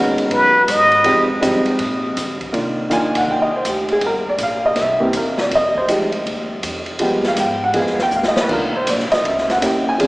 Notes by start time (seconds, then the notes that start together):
Already playing: D#2 D#3 G#3 B3 C#4 F#4
0.18 muted upright bass stroke, ride
0.30 F#2 B4, kick, ride
0.68 G#2 D#5, kick, hi-hat pedal, ride
0.92 ride
1.04 F2 F3 G#3 C4 D#4 G4, kick, ride
1.41 G2 F3 G#3 C4 D#4 G4, kick, hi-hat pedal, ride
1.65 muted upright bass stroke, ride
1.79 A#2, kick, ride
2.17 D3, kick, hi-hat pedal, ride
2.41 kick, ride
2.52 C3 D#3 A#3 D4 F4, kick, ride
2.90 F2 D#3 A#3 D4 F4 G#5, kick, hi-hat pedal, ride
3.15 F#5, ride
3.28 D#2 G5, kick
3.42 D#5
3.56 C5
3.65 D2, kick, hi-hat pedal, ride
3.69 G4
3.88 G#4, ride
4.01 G1, kick, ride
4.06 A#4
4.29 D5
4.38 A#1, kick, hi-hat pedal, ride
4.43 F5
4.66 D#5
4.76 C2, kick, snare, ride
4.81 E5
4.99 E3 A#3 C4 G4, kick
5.13 E2 A#4, kick, hi-hat pedal, ride
5.38 D5, snare
5.51 F2, kick, ride
5.55 D#5
5.75 C5, kick
5.88 D2 F3 G#3 D#4 G4, kick, hi-hat pedal, ride
6.12 ride
6.26 D#2, kick, ride
6.63 F2, kick, hi-hat pedal, ride
6.86 ride
6.99 G2 F3 G#3 B3 G4, kick, ride
7.24 snare
7.28 F5
7.37 G#2 G5, kick, hi-hat pedal, ride
7.64 F#5
7.74 F2 F3 G#3 B3 G#4, kick, ride
7.78 F5
7.87 snare
7.99 G5, snare
8.11 D2, hi-hat pedal
8.16 F5
8.23 snare
8.28 D#5
8.36 snare
8.41 B4
8.49 C2 D#3 A#3 D4 F4 A#4, kick, crash
8.76 C5
8.87 A#1 D5, kick, hi-hat pedal, ride
9.00 snare
9.10 D#5, muted upright bass stroke, snare, ride
9.24 C#2 E5, kick, ride
9.38 snare
9.50 F#5, snare, ride
9.61 D#2 A#3 C#4 E4 G4, kick, hi-hat pedal, ride
9.66 G5
9.89 G#5
9.98 D2 F3 C4 D4 G#4, kick, ride